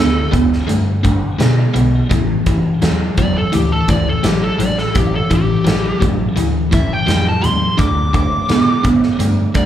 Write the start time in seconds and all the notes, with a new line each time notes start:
Already playing: D2 D3 B3 A4
0.31 D2 D3 B3, kick, closed hi-hat
0.53 snare
0.67 G2 D3 A3, closed hi-hat
1.03 D3 A3, kick, closed hi-hat
1.39 B2 D3 B3, snare, closed hi-hat
1.74 B1 D3 B3, closed hi-hat
2.10 A1 A2 E3, kick, closed hi-hat
2.46 A2 E3, kick, closed hi-hat
2.82 E2 A2 F#3, snare, closed hi-hat
3.17 E2 A2 F#3 D5, kick, closed hi-hat
3.38 A4
3.52 D2 A2 E3 G4, closed hi-hat
3.72 A4
3.88 D2 A2 E3 D5, kick, closed hi-hat
4.09 A4
4.23 A1 A2 F#3 G4, snare, closed hi-hat
4.44 A4
4.58 A1 A2 F#3 D5, closed hi-hat
4.78 A4, snare
4.94 A1 A2 E3 G4, kick, closed hi-hat
5.15 A4
5.30 A1 A2 E3, kick, closed hi-hat
5.34 G4
5.64 A1 A2 F#3, snare, closed hi-hat
6.00 A1 A2 F#3, kick, closed hi-hat
6.36 D2 A2 E3, closed hi-hat
6.71 A2 E3 E5, kick, closed hi-hat
6.93 G5
7.07 F2 A2 F#3, snare, closed hi-hat
7.29 A5
7.42 E2 A2 F#3 C6, closed hi-hat
7.78 D2 D3 A3 D6, kick, closed hi-hat
8.13 D3 A3 D6, kick, closed hi-hat
8.49 A2 D3 B3, snare, closed hi-hat
8.83 A2 D3 B3, kick, closed hi-hat
9.03 snare
9.19 G2 D3 A3, closed hi-hat
9.54 G2 D3 A3 D5, kick, closed hi-hat